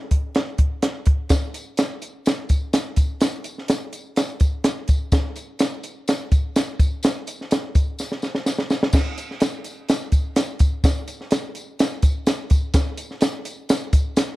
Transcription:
0.11 kick, closed hi-hat
0.35 snare, closed hi-hat
0.58 kick, closed hi-hat
0.82 snare, closed hi-hat
1.06 kick, closed hi-hat
1.29 kick, snare, closed hi-hat, tambourine
1.54 closed hi-hat, tambourine
1.77 snare, closed hi-hat, tambourine
2.02 closed hi-hat, tambourine
2.26 snare, closed hi-hat, tambourine
2.49 kick, closed hi-hat, tambourine
2.73 snare, closed hi-hat, tambourine
2.96 kick, closed hi-hat, tambourine
3.21 snare, closed hi-hat, tambourine
3.44 closed hi-hat, tambourine
3.58 snare
3.68 snare, closed hi-hat, tambourine
3.93 closed hi-hat, tambourine
4.16 snare, closed hi-hat, tambourine
4.40 kick, closed hi-hat, tambourine
4.64 snare, closed hi-hat, tambourine
4.88 kick, closed hi-hat, tambourine
5.12 kick, snare, closed hi-hat, tambourine
5.36 closed hi-hat, tambourine
5.59 snare, closed hi-hat, tambourine
5.83 closed hi-hat, tambourine
6.08 snare, closed hi-hat, tambourine
6.32 kick, closed hi-hat, tambourine
6.56 snare, closed hi-hat, tambourine
6.79 kick, closed hi-hat, tambourine
7.03 snare, closed hi-hat, tambourine
7.27 closed hi-hat, tambourine
7.41 snare
7.51 snare, closed hi-hat, tambourine
7.75 kick, closed hi-hat, tambourine
7.99 snare, tambourine
8.12 snare
8.22 snare, tambourine
8.35 snare
8.46 snare, tambourine
8.59 snare
8.70 snare, tambourine
8.83 snare
8.93 kick, snare, crash, tambourine
9.18 closed hi-hat, tambourine
9.31 snare
9.40 snare, closed hi-hat, tambourine
9.64 closed hi-hat, tambourine
9.89 snare, closed hi-hat, tambourine
10.12 kick, closed hi-hat, tambourine
10.36 snare, closed hi-hat, tambourine
10.59 kick, closed hi-hat, tambourine
10.84 kick, snare, closed hi-hat, tambourine
11.08 closed hi-hat, tambourine
11.21 snare
11.31 snare, closed hi-hat, tambourine
11.55 closed hi-hat, tambourine
11.79 snare, closed hi-hat, tambourine
12.02 kick, closed hi-hat, tambourine
12.27 snare, closed hi-hat, tambourine
12.50 kick, closed hi-hat, tambourine
12.74 kick, snare, closed hi-hat, tambourine
12.97 closed hi-hat, tambourine
13.11 snare
13.21 snare, closed hi-hat, tambourine
13.45 closed hi-hat, tambourine
13.69 snare, closed hi-hat, tambourine
13.93 kick, closed hi-hat, tambourine
14.17 snare, closed hi-hat, tambourine

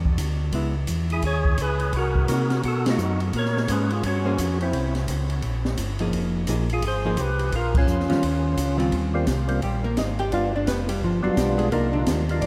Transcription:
Already playing: E2
0.05 kick
0.18 D2, kick, hi-hat pedal, ride
0.52 C#2 G#3 B3 E4, kick, ride
0.87 E2, kick, hi-hat pedal, ride
1.10 E4 G#4, ride
1.22 D#2 G#4, kick, ride
1.26 C#5
1.45 kick
1.58 C#2, kick, hi-hat pedal, ride
1.62 G#4 B4
1.79 ride
1.93 C2, kick, ride
1.97 F#4 A#4
2.15 kick
2.28 C3 A#3 D#4 F#4, kick, hi-hat pedal, ride
2.50 snare, ride
2.63 B2 F#4, kick, ride
2.68 A4
2.86 A3 D#4 F4, snare, ride
2.90 D#4 F#4
2.98 F#2, hi-hat pedal
3.20 ride
3.33 A#2 A#4, kick, ride
3.39 C#5
3.45 snare
3.57 snare
3.68 G#2 A#3 C#4 G#4 B4 C5, kick, hi-hat pedal, ride
3.90 F4 G#4, ride
4.03 G2 C#4, kick, ride
4.08 F#4
4.25 A#3 C#4 G#4 C5
4.38 F2, kick, hi-hat pedal, ride
4.61 C4 E4, ride
4.73 C2, kick, ride
4.95 snare, ride
5.08 C#2, kick, hi-hat pedal, ride
5.30 ride
5.42 A#1, kick, ride
5.65 snare
5.77 G1, kick, hi-hat pedal, ride
5.99 F3 A#3 D#4 G#4, ride
6.12 F1, kick, ride
6.47 A#1 F3 A#3 D#4 G#4, kick, hi-hat pedal, ride
6.70 F4, ride
6.74 G#4
6.82 G#1, kick, ride
6.87 G#4 C5
7.05 F3 A#3 D#4 G#4
7.17 C2 G4 B4, kick, hi-hat pedal, ride
7.39 ride
7.52 A#1 F4 A#4, kick, ride
7.75 C#4 F4, kick, crash
7.87 F2, hi-hat pedal
8.00 snare
8.09 F2 D#3 G3 C#4 F4, snare, ride
8.22 D#2, kick, ride
8.57 C#2, kick, hi-hat pedal, ride
8.77 D#3 G3 C4 F4, ride
8.92 D#2, kick, ride
9.14 G3 A#3 C4 F4
9.27 C2, kick, snare, hi-hat pedal, ride
9.48 G3 A#3 C4 F4, ride
9.62 A#1 G3 G4, kick, ride
9.84 A#3 A#4
9.97 G#1 D#4 D#5, kick, snare, hi-hat pedal, ride
10.19 G4 G5, ride
10.32 G1 G3 B3 D4 F4 F5, kick, ride
10.56 D4 D5
10.67 F1 B3 B4, kick, snare, hi-hat pedal, ride
10.89 G3 G4, ride
11.02 G1 F3 F4, kick
11.23 G1 F#3 G3 B3 D4 F4 F#4
11.37 B1 G3 G4, kick, snare, hi-hat pedal, ride
11.58 G#3 G#4, ride
11.72 C2 A#3 D4 D#4 F4 A#4, kick, ride
11.93 D3 D4
12.06 D#2, kick, snare, hi-hat pedal, ride
12.29 A#3 D4 D#4 F4, ride
12.41 F2 D5, kick, ride

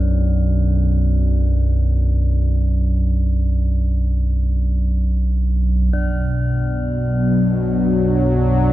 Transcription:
Already playing: B1 F#2 D4 D5
5.93 B1 F#2 B2 D4 D5
7.05 F#3
7.54 D4

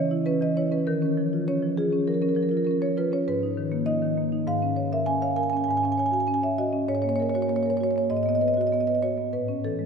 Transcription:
0.00 E3 C#5
0.11 E4
0.26 C#4 B4
0.41 E3 D#5
0.57 E4 C#5
0.71 C#4 B4
0.87 D#3 A#4
1.02 C#4
1.17 F3
1.33 F4
1.48 C#4 C#5
1.62 F3
1.77 F4 G#4
1.92 C#4
2.07 F3 A#4
2.14 A#4
2.22 C#4 A#4
2.29 A#4
2.35 F3 A#4
2.43 A#4
2.49 F4 A#4
2.57 A#4
2.64 C#4 A#4
2.71 A#4
2.81 F3 C#5
2.97 F4 B4
3.12 C#4 C#5
3.28 G#2 B4
3.43 D#4
3.57 D#3
3.72 A#3
3.86 D#4 D#5
4.02 D#3
4.18 A#3
4.32 D#4
4.47 G#2 F5
4.62 C#4
4.76 C#5
4.92 A#4 E5
5.06 C#4 G#5
5.22 C#5 F5
5.36 A#4 G#5
5.43 G#5
5.50 C#4 G#5
5.57 G#5
5.64 G#5
5.68 G#2 G#5
5.77 G#5
5.83 C#4 G#5
5.92 G#5
5.98 C#5 G#5
6.06 G#5
6.11 F#4 G#5
6.20 G#5
6.27 C#4 G#5
6.34 G#5
6.42 C#5 E5
6.58 F#4 D#5
6.73 C#4
6.88 G#2 C#5
6.95 C#5
7.02 A#3 C#5
7.09 C#5
7.16 C#5
7.20 A#4 C#5
7.29 C#5
7.34 F#4 C#5
7.42 C#5
7.49 A#3 C#5
7.56 C#5
7.63 A#4 C#5
7.70 C#5
7.77 F#4 C#5
7.84 C#5
7.91 C#5
7.96 A#3 C#5
8.10 G#2 D#5
8.17 D#5
8.23 B3 D#5
8.29 D#5
8.35 D#5
8.41 B4 D#5
8.48 D#5
8.54 F#4 D#5
8.61 D#5
8.67 D#5
8.72 B3 D#5
8.80 D#5
8.87 B4 D#5
8.95 D#5
9.02 F#4 C#5
9.18 B3
9.33 A2 B4
9.48 C#4
9.64 E3 A4
9.79 G#3

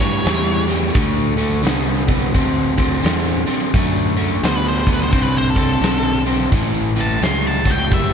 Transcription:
Already playing: G2 C#5
0.00 A2 G3
0.24 E2 A2 G3, snare, open hi-hat
0.67 A2 G3
0.94 D2 D3 A3, kick, open hi-hat
1.37 D3 A3
1.63 C2 D3 B3, snare, open hi-hat
2.07 D3 B3, kick
2.34 D2 D3 C4, kick, open hi-hat
2.77 D3 C4, kick
2.93 snare
3.03 E2 D3 C4, snare, open hi-hat
3.47 D3 C4, muted fingered electric bass stroke
3.73 F#2 D3 A3, kick, open hi-hat
4.16 D3 A3
4.43 D2 D3 B3 C5, snare, open hi-hat
4.56 B4
4.68 C5
4.80 C5
4.87 D3 B3, kick
4.93 B4
5.04 C5
5.12 C2 D3 C4 C5, kick, open hi-hat
5.23 B4
5.37 C5
5.50 A4
5.56 D3 C4, kick
5.81 B1 D3 C4, snare, open hi-hat
6.27 D3 C4
6.52 A1 A2 E3, kick, open hi-hat
6.96 A2 E3
7.01 A5
7.21 C#2 A2 F#3 C6, snare, open hi-hat
7.48 A5
7.65 A2 F#3, kick
7.71 G5
7.91 F#1 A2 G3 E5, kick, open hi-hat

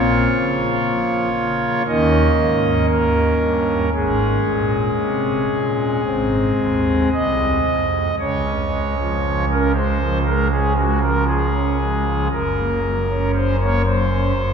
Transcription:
Already playing: A#1 A#2 A#3 F4 C#5
0.35 C#3
0.86 F3
1.38 C#3
1.88 D#2 D#3 A#3 C#4 D#5
2.39 G#2
2.89 D#2 A#4
3.41 G2
3.94 G#1 G#2 G#3 C#4 G#4
4.46 A#2
5.01 C3
5.54 A#2
6.05 G#1 G#2 G#3 C4
6.58 D#2
7.13 C2 D#5
7.66 F2
8.19 C#2 C#3 C#5
8.45 C#4
8.71 G#3
8.98 F3
9.50 C#4 A#4
9.74 G#3 C5
10.00 F3
10.25 G#3 A#4
10.51 C#4 G#4
10.77 G#3 F#4
11.02 F3 A#4
11.28 G#4
11.54 C#4
11.80 G#3
12.07 F3
12.32 F#1 F#2 A#4
12.57 A#3
12.85 F#3
13.10 C#4
13.35 C5
13.61 A#3 C#5
13.87 F#3 C5
14.13 C#4
14.36 F#1 F#2

